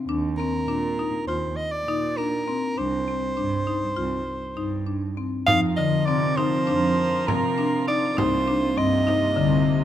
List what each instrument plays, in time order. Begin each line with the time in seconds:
0.08 cello D#2, marimba D4
0.37 marimba C4, soprano saxophone A#4
0.67 cello A#2, marimba D4
0.99 marimba D#4
1.27 cello D#2, marimba F4, soprano saxophone C5
1.56 soprano saxophone D#5
1.72 soprano saxophone D5
1.87 cello A#2, marimba D#4
2.17 marimba D4, soprano saxophone A#4
2.48 marimba C4
2.78 cello C2, marimba D4, soprano saxophone C5
3.08 marimba C4
3.37 cello G2, marimba D4
3.67 marimba D#4
3.96 cello C2, marimba F4
4.57 cello G2, marimba D#4
4.86 marimba D4
5.17 marimba C4
5.46 cello F2, string section F3 F4 A#4, marimba D#4, soprano saxophone F5, frame drum
5.76 marimba D3, soprano saxophone D#5
6.05 cello C3, marimba C4, soprano saxophone D5
6.36 marimba D#4, soprano saxophone C5, frame drum
6.67 cello F2, marimba D4
7.27 cello C3, marimba C4, soprano saxophone A#4, frame drum
7.58 marimba D4
7.88 marimba D#4, soprano saxophone D5
8.17 cello C2, string section C3 A#3, marimba D#4, soprano saxophone C5, frame drum
8.48 marimba D4
8.77 cello G2, marimba C4, soprano saxophone D#5
9.07 marimba D#4, frame drum
9.36 cello C2, marimba D3